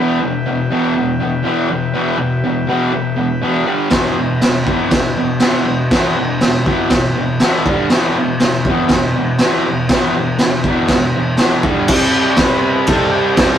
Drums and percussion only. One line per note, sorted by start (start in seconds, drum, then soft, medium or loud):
3.90 kick loud
3.90 snare loud
3.90 crash medium
4.42 snare loud
4.42 crash medium
4.67 kick medium
4.91 kick loud
4.91 snare loud
4.91 crash medium
5.40 snare loud
5.40 crash medium
5.91 kick loud
5.91 snare loud
5.91 crash medium
6.41 snare loud
6.41 crash medium
6.66 kick medium
6.90 kick loud
6.90 snare loud
6.90 crash medium
7.40 snare loud
7.40 crash medium
7.66 kick loud
7.90 snare loud
7.90 crash medium
8.40 snare loud
8.40 crash soft
8.65 kick medium
8.89 kick loud
8.89 snare loud
8.89 crash soft
9.39 snare loud
9.39 crash medium
9.89 kick loud
9.89 snare loud
9.89 crash medium
10.39 snare loud
10.39 crash medium
10.64 kick medium
10.88 kick loud
10.88 snare loud
10.88 crash medium
11.37 snare loud
11.37 crash medium
11.63 kick loud
11.88 kick loud
11.88 crash loud
11.88 crash medium
12.37 kick loud
12.37 snare loud
12.37 crash medium
12.87 kick loud
12.87 crash medium
13.37 kick loud
13.37 snare loud
13.37 crash medium